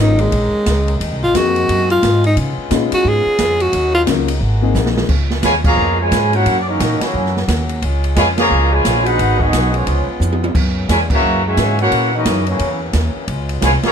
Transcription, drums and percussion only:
0.19 ride
0.32 kick, ride
0.66 kick, snare, hi-hat pedal, ride
0.88 ride
1.00 kick, ride
1.35 kick, snare, hi-hat pedal, ride
1.56 ride
1.69 kick, ride
1.90 ride
2.03 kick, snare, hi-hat pedal, ride
2.24 ride
2.37 kick, ride
2.71 kick, snare, hi-hat pedal, ride
2.92 ride
3.05 kick
3.38 kick, snare, hi-hat pedal, ride
3.60 ride
3.73 kick, ride
4.07 kick, snare, hi-hat pedal, ride
4.28 ride
4.41 kick
4.75 snare, hi-hat pedal
4.86 snare
4.97 snare
5.09 kick, crash
5.30 snare
5.43 kick, snare, hi-hat pedal, ride
5.64 kick, crash
6.11 kick, snare, hi-hat pedal, ride
6.33 ride
6.46 kick, ride
6.80 kick, snare, hi-hat pedal, ride
7.01 snare, ride
7.14 kick
7.26 snare
7.37 snare
7.48 kick, snare, hi-hat pedal, ride
7.69 ride
7.82 kick, ride
8.04 ride
8.16 kick, snare, hi-hat pedal, ride
8.38 snare, ride
8.85 kick, snare, hi-hat pedal, ride
9.06 ride
9.19 kick, ride
9.40 kick
9.53 snare, hi-hat pedal, ride
9.74 ride
9.87 kick, ride
10.21 hi-hat pedal, high tom
10.32 high tom
10.44 high tom
10.55 kick, crash
10.89 kick, snare, hi-hat pedal, ride
11.10 kick, crash
11.57 kick, snare, hi-hat pedal, ride
11.79 ride
11.91 kick, ride
12.25 kick, snare, hi-hat pedal, ride
12.46 ride
12.59 kick, ride
12.93 kick, snare, hi-hat pedal, ride
13.28 kick, ride
13.49 ride
13.62 kick, snare, hi-hat pedal, ride
13.83 snare, ride

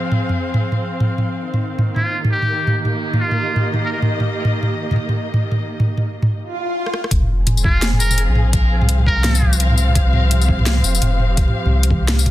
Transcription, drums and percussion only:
0.12 mid tom
0.29 mid tom
0.54 mid tom
0.72 mid tom
1.00 mid tom
1.18 mid tom
1.54 mid tom
1.79 mid tom
1.96 mid tom
2.25 mid tom
2.42 mid tom
2.67 mid tom
2.85 mid tom
3.14 mid tom
3.31 mid tom
3.56 mid tom
3.74 mid tom
4.02 mid tom
4.20 mid tom
4.45 mid tom
4.63 mid tom
4.91 mid tom
4.96 mid tom
5.09 mid tom
5.34 mid tom
5.52 mid tom
5.80 mid tom
5.98 mid tom
6.22 mid tom
6.86 cross-stick
6.94 cross-stick
7.04 cross-stick
7.11 kick, closed hi-hat
7.22 mid tom
7.47 closed hi-hat, mid tom
7.57 tambourine
7.64 kick, mid tom
7.82 snare, closed hi-hat
7.93 mid tom
8.00 tambourine
8.11 mid tom, tambourine
8.18 closed hi-hat
8.35 mid tom
8.53 kick, closed hi-hat, mid tom
8.82 mid tom
8.89 closed hi-hat
8.99 mid tom
9.07 kick
9.24 snare, closed hi-hat, mid tom
9.35 tambourine
9.42 kick, mid tom
9.53 tambourine
9.60 closed hi-hat
9.70 mid tom
9.78 tambourine
9.88 mid tom
9.95 kick, closed hi-hat
10.13 mid tom
10.31 closed hi-hat, mid tom
10.42 tambourine
10.49 kick
10.59 mid tom
10.66 snare, closed hi-hat
10.77 mid tom
10.84 tambourine
10.95 tambourine
11.02 closed hi-hat, mid tom
11.20 mid tom
11.37 kick, closed hi-hat
11.48 mid tom
11.66 mid tom
11.83 closed hi-hat
11.90 kick, mid tom
12.08 snare, closed hi-hat, mid tom
12.19 tambourine
12.26 kick, closed hi-hat

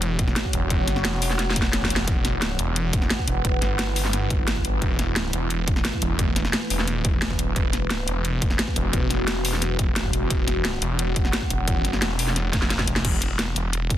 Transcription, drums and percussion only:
0.02 closed hi-hat
0.19 kick, closed hi-hat
0.28 snare
0.36 snare, closed hi-hat
0.45 kick
0.53 closed hi-hat
0.70 kick, closed hi-hat
0.88 snare, closed hi-hat
0.96 snare
1.05 snare, closed hi-hat
1.22 open hi-hat
1.30 snare
1.39 snare, closed hi-hat
1.50 snare
1.56 kick, closed hi-hat
1.62 snare
1.73 snare, closed hi-hat
1.82 kick, snare
1.90 closed hi-hat
1.96 snare
2.08 kick, closed hi-hat
2.25 snare, closed hi-hat
2.42 snare, closed hi-hat
2.59 closed hi-hat
2.76 closed hi-hat
2.93 kick, closed hi-hat
3.02 snare
3.10 snare, closed hi-hat
3.19 kick
3.28 closed hi-hat
3.45 kick, closed hi-hat
3.62 snare, closed hi-hat
3.79 snare, closed hi-hat
3.96 open hi-hat
4.05 snare
4.13 snare, closed hi-hat
4.30 kick, closed hi-hat
4.48 snare, closed hi-hat
4.56 kick
4.65 closed hi-hat
4.82 kick, closed hi-hat
4.99 snare, closed hi-hat
5.16 snare, closed hi-hat
5.33 closed hi-hat
5.50 closed hi-hat
5.68 kick, closed hi-hat
5.76 snare
5.85 snare, closed hi-hat
5.93 kick
6.02 closed hi-hat
6.19 kick, closed hi-hat
6.36 snare, closed hi-hat
6.45 snare
6.53 snare, closed hi-hat
6.70 open hi-hat
6.79 snare
6.88 snare, closed hi-hat
7.05 kick, closed hi-hat
7.22 snare, closed hi-hat
7.30 kick
7.39 closed hi-hat
7.56 kick, closed hi-hat
7.73 snare, closed hi-hat
7.90 snare, closed hi-hat
8.08 closed hi-hat
8.25 closed hi-hat
8.42 kick, closed hi-hat
8.50 snare
8.59 snare, closed hi-hat
8.68 kick
8.76 closed hi-hat
8.93 kick, closed hi-hat
9.10 snare, closed hi-hat
9.28 snare, closed hi-hat
9.45 open hi-hat
9.53 snare
9.62 snare, closed hi-hat
9.79 kick, closed hi-hat
9.96 snare, closed hi-hat
10.05 kick
10.13 closed hi-hat
10.30 kick, closed hi-hat
10.48 snare, closed hi-hat
10.65 snare, closed hi-hat
10.82 closed hi-hat
10.99 closed hi-hat
11.16 kick, closed hi-hat
11.25 snare
11.33 snare, closed hi-hat
11.42 kick
11.50 closed hi-hat
11.68 kick, closed hi-hat
11.85 snare, closed hi-hat
11.93 snare
12.02 snare, closed hi-hat
12.19 open hi-hat
12.28 snare
12.36 snare, closed hi-hat
12.53 kick, snare, closed hi-hat
12.62 snare
12.70 snare, closed hi-hat
12.79 kick, snare
12.88 closed hi-hat
12.96 snare
13.05 kick, closed hi-hat, crash
13.22 closed hi-hat
13.39 snare, closed hi-hat
13.56 closed hi-hat
13.73 closed hi-hat
13.90 kick, closed hi-hat

